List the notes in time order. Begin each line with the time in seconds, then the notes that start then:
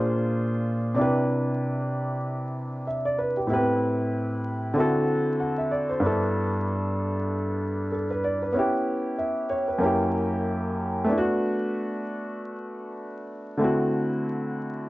Already playing: A#2 D4 F4 G#4 C5
0.95 C3 D4 E4
1.00 G4 B4
2.87 E5
3.05 D5
3.18 B4
3.37 G4
3.47 A2 B3 E4
3.52 C4 G4 B4
4.74 D3 C4 E4
4.78 F#4 A4
5.40 F#5
5.58 E5
5.71 D5
5.89 C5
6.00 G2 B3 D4
6.05 E4 A4
7.92 A4
8.10 B4
8.24 D5
8.42 B4
8.52 B3 C#4
8.57 E4 G4
9.18 E5
9.50 C#5
9.68 B4
9.78 F#2 A#3 C#4
9.83 E4 G4
11.04 A3 B3
11.09 D4 E4
11.18 F#4
13.57 D3 A3 C4
13.62 E4 F#4